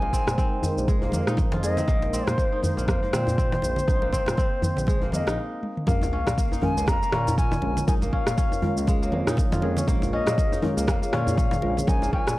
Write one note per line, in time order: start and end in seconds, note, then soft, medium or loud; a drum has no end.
0.00 0.18 A#1 loud
0.00 5.34 G#3 medium
0.00 1.02 A#3 medium
0.00 0.13 C4 loud
0.00 1.27 D#4 medium
0.00 5.34 D#4 medium
0.00 5.34 A#4 medium
0.00 5.34 C5 loud
0.00 0.63 G#5 loud
0.00 muted conga medium
0.13 0.38 C4 loud
0.13 kick medium
0.13 shaker medium
0.27 0.34 A#2 loud
0.27 cross-stick medium
0.27 djembe slap medium
0.27 djembe tone medium
0.27 shaker medium
0.38 1.77 C4 loud
0.38 kick loud
0.38 muted conga soft
0.38 shaker soft
0.63 mid tom medium
0.63 djembe tone medium
0.63 djembe bass loud
0.63 shaker medium
0.77 1.14 A#1 medium
0.77 shaker medium
0.88 3.22 G#3 loud
0.88 kick loud
0.88 muted conga soft
0.88 shaker soft
1.02 1.13 A#3 medium
1.02 djembe tone medium
1.12 1.22 F2 medium
1.12 1.88 A#3 medium
1.12 mid tom medium
1.12 high conga medium
1.12 shaker medium
1.27 1.41 A#2 medium
1.27 2.52 D#4 loud
1.27 cross-stick medium
1.27 muted conga soft
1.27 shaker soft
1.37 kick loud
1.37 high conga loud
1.37 djembe tone medium
1.37 shaker soft
1.52 1.81 F2 loud
1.52 3.04 F4 medium
1.52 mid tom medium
1.52 djembe slap loud
1.52 high conga loud
1.63 3.00 G#4 medium
1.63 2.29 D#5 loud
1.63 muted conga medium
1.63 shaker medium
1.77 2.13 C4 medium
1.77 djembe tone medium
1.77 low conga medium
1.77 shaker medium
1.88 2.18 A#1 medium
1.88 2.27 A#3 loud
1.88 kick loud
1.88 high conga loud
1.88 shaker soft
2.02 djembe slap medium
2.02 muted conga medium
2.13 3.13 C4 loud
2.13 shaker medium
2.27 2.34 A#2 loud
2.27 2.38 A#3 medium
2.27 2.63 C5 loud
2.27 cross-stick medium
2.27 djembe slap medium
2.27 high conga medium
2.27 djembe tone medium
2.27 shaker medium
2.38 2.77 A#3 medium
2.38 kick loud
2.38 muted conga soft
2.38 shaker soft
2.52 3.87 D#4 medium
2.63 5.09 C5 loud
2.63 mid tom medium
2.63 djembe tone medium
2.63 high conga medium
2.63 djembe bass medium
2.63 shaker medium
2.77 2.90 A#1 medium
2.77 2.87 A#3 medium
2.77 shaker medium
2.88 2.97 F2 medium
2.88 3.02 A#3 loud
2.88 kick loud
2.88 cross-stick medium
2.88 muted conga soft
2.88 high conga medium
2.88 shaker soft
3.03 4.02 A#3 medium
3.03 djembe tone medium
3.13 3.56 A#2 loud
3.13 3.38 C4 loud
3.13 cross-stick medium
3.13 mid tom medium
3.13 djembe slap loud
3.13 djembe tone medium
3.13 shaker medium
3.27 muted conga soft
3.27 djembe bass medium
3.27 shaker soft
3.38 4.12 C4 loud
3.38 kick loud
3.38 shaker soft
3.52 mid tom loud
3.52 djembe slap loud
3.62 3.80 A#1 medium
3.62 muted conga medium
3.62 djembe tone medium
3.62 shaker medium
3.76 low conga medium
3.76 shaker soft
3.87 4.18 A#1 loud
3.87 5.26 D#4 medium
3.87 kick loud
3.87 high conga medium
3.87 shaker soft
4.02 5.02 A#3 medium
4.02 muted conga medium
4.12 4.37 C4 loud
4.12 kick medium
4.12 low conga medium
4.12 shaker medium
4.26 4.34 A#2 loud
4.26 cross-stick medium
4.26 djembe slap medium
4.26 high conga medium
4.26 djembe tone medium
4.26 shaker soft
4.37 6.19 C4 loud
4.37 kick loud
4.37 muted conga soft
4.37 shaker soft
4.62 mid tom medium
4.62 djembe tone medium
4.62 high conga medium
4.62 djembe bass loud
4.62 shaker medium
4.77 5.14 A#1 medium
4.77 low conga medium
4.77 shaker medium
4.87 5.93 G#3 medium
4.87 kick loud
4.87 muted conga medium
4.87 shaker soft
5.02 5.12 A#3 medium
5.02 djembe tone medium
5.12 5.22 F2 medium
5.12 5.87 A#3 medium
5.12 5.36 D#5 medium
5.12 mid tom medium
5.12 high conga medium
5.12 shaker medium
5.27 5.38 A#1 medium
5.27 6.52 D#4 loud
5.27 cross-stick medium
5.27 muted conga soft
5.27 shaker soft
5.63 high tom medium
5.77 mid tom medium
5.87 6.18 A#1 loud
5.87 6.60 G#3 medium
5.87 6.27 A#3 loud
5.87 12.39 A#3 medium
5.87 6.60 C#4 medium
5.87 12.39 F4 medium
5.87 6.60 F4 medium
5.87 6.60 A#4 medium
5.87 9.84 A#4 medium
5.87 12.39 C#5 loud
5.87 6.65 F5 loud
5.87 kick loud
5.87 sub drop medium
5.87 high conga loud
5.87 shaker medium
6.01 muted conga medium
6.01 djembe slap medium
6.01 djembe tone medium
6.01 shaker soft
6.13 7.13 C#4 loud
6.27 6.33 A#2 loud
6.27 6.38 A#3 medium
6.27 cross-stick loud
6.27 djembe slap medium
6.27 djembe tone medium
6.27 high conga medium
6.27 shaker medium
6.38 6.77 A#3 medium
6.38 kick loud
6.38 muted conga soft
6.38 shaker medium
6.52 7.88 D#4 medium
6.52 djembe tone medium
6.52 shaker soft
6.62 7.60 G#3 medium
6.62 7.60 C#4 medium
6.62 7.60 F4 medium
6.62 7.60 A#4 loud
6.62 6.90 G#5 loud
6.62 mid tom medium
6.62 djembe tone loud
6.62 high conga medium
6.62 djembe bass medium
6.77 6.89 C#2 medium
6.77 6.87 A#3 medium
6.77 shaker medium
6.87 6.97 F2 medium
6.87 7.02 A#3 loud
6.87 7.37 A#5 loud
6.87 kick loud
6.87 cross-stick loud
6.87 muted conga medium
6.87 high conga medium
6.87 shaker medium
7.02 8.02 A#3 medium
7.02 shaker soft
7.12 7.56 A#2 loud
7.12 7.38 C#4 loud
7.12 cross-stick medium
7.12 mid tom medium
7.12 djembe slap loud
7.27 muted conga soft
7.27 djembe bass loud
7.27 shaker medium
7.38 8.12 C#4 loud
7.38 7.84 G#5 loud
7.38 kick loud
7.38 shaker medium
7.51 mid tom loud
7.51 djembe slap loud
7.51 djembe tone medium
7.51 shaker soft
7.62 7.79 A#1 medium
7.62 7.80 G#3 medium
7.62 7.80 C#4 medium
7.62 7.80 F4 medium
7.62 7.80 A#4 medium
7.62 muted conga medium
7.77 low conga loud
7.77 shaker medium
7.87 8.18 A#1 loud
7.87 8.60 G#3 medium
7.87 8.60 C#4 medium
7.87 9.27 D#4 medium
7.87 8.60 F4 medium
7.87 8.60 A#4 loud
7.87 7.94 G#5 loud
7.87 kick loud
7.87 high conga loud
7.87 shaker medium
8.02 9.02 A#3 medium
8.02 muted conga medium
8.02 djembe tone medium
8.02 shaker soft
8.13 8.37 C#4 loud
8.13 9.09 F5 loud
8.13 kick medium
8.27 8.34 A#2 loud
8.27 cross-stick loud
8.27 djembe slap medium
8.27 shaker medium
8.38 9.78 C#4 loud
8.38 kick loud
8.38 muted conga soft
8.38 shaker medium
8.52 djembe tone medium
8.52 shaker soft
8.62 9.60 G#3 loud
8.62 9.60 C#4 medium
8.62 9.60 F4 medium
8.62 9.60 A#4 loud
8.62 mid tom medium
8.62 djembe tone loud
8.62 djembe bass loud
8.77 9.14 C#2 medium
8.77 shaker medium
8.87 11.22 G#3 loud
8.87 kick loud
8.87 muted conga medium
8.87 shaker medium
9.03 9.13 A#3 medium
9.03 shaker soft
9.12 9.21 F2 medium
9.12 9.88 A#3 medium
9.12 mid tom medium
9.12 high conga medium
9.27 9.41 A#2 medium
9.27 10.52 D#4 loud
9.27 cross-stick medium
9.27 muted conga soft
9.27 djembe tone medium
9.27 shaker medium
9.37 kick loud
9.37 high conga loud
9.37 shaker medium
9.52 9.81 F2 loud
9.52 11.04 F4 medium
9.52 mid tom loud
9.52 djembe slap loud
9.52 high conga loud
9.52 shaker soft
9.62 9.80 G#3 medium
9.62 9.80 C#4 medium
9.62 9.80 F4 medium
9.62 11.00 G#4 medium
9.62 9.80 A#4 medium
9.62 muted conga medium
9.77 10.13 C#4 medium
9.77 low conga loud
9.77 shaker medium
9.87 10.18 A#1 loud
9.87 10.60 G#3 medium
9.87 10.27 A#3 loud
9.87 10.60 C#4 medium
9.87 10.60 F4 medium
9.87 12.39 G#4 medium
9.87 10.60 A#4 medium
9.87 kick loud
9.87 high conga loud
9.87 shaker medium
10.02 djembe slap medium
10.02 muted conga soft
10.02 djembe tone medium
10.02 shaker soft
10.12 11.12 C#4 loud
10.12 10.59 D#5 loud
10.26 10.34 A#2 loud
10.26 10.37 A#3 medium
10.26 cross-stick loud
10.26 djembe slap medium
10.26 djembe tone medium
10.26 high conga medium
10.26 shaker medium
10.38 10.77 A#3 medium
10.38 kick loud
10.38 muted conga soft
10.38 shaker medium
10.52 11.87 D#4 medium
10.52 djembe tone loud
10.52 shaker soft
10.62 11.60 G#3 loud
10.62 11.60 C#4 medium
10.62 11.60 F4 medium
10.62 11.60 A#4 loud
10.62 mid tom medium
10.62 high conga medium
10.62 djembe tone loud
10.62 djembe bass medium
10.77 10.89 C#2 medium
10.77 10.87 A#3 medium
10.77 shaker medium
10.87 10.97 F2 medium
10.87 11.02 A#3 loud
10.87 10.93 G#5 medium
10.87 kick loud
10.87 cross-stick loud
10.87 muted conga soft
10.87 high conga medium
10.87 shaker medium
10.92 11.89 F5 medium
11.02 12.02 A#3 medium
11.02 shaker soft
11.13 11.56 A#2 loud
11.13 11.37 C#4 loud
11.13 cross-stick medium
11.13 mid tom medium
11.13 djembe slap loud
11.27 muted conga soft
11.27 djembe bass medium
11.27 shaker medium
11.37 12.12 C#4 loud
11.37 kick loud
11.37 shaker medium
11.51 mid tom medium
11.51 djembe slap loud
11.51 djembe tone loud
11.51 shaker soft
11.62 11.80 A#1 medium
11.62 11.80 G#3 medium
11.62 11.80 C#4 medium
11.62 11.80 F4 medium
11.62 11.80 A#4 medium
11.62 muted conga medium
11.77 low conga medium
11.77 shaker medium
11.87 12.18 A#1 loud
11.87 12.39 G#3 medium
11.87 12.39 C#4 medium
11.87 12.39 D#4 medium
11.87 12.39 F4 medium
11.87 12.39 A#4 medium
11.87 12.12 G#5 loud
11.87 kick loud
11.87 high conga loud
11.87 shaker medium
12.02 12.39 A#3 medium
12.02 muted conga medium
12.02 djembe tone medium
12.02 shaker soft
12.13 12.38 C#4 loud
12.13 12.39 G#5 loud
12.13 kick medium
12.27 12.34 A#2 loud
12.27 cross-stick medium
12.27 djembe slap medium
12.27 shaker medium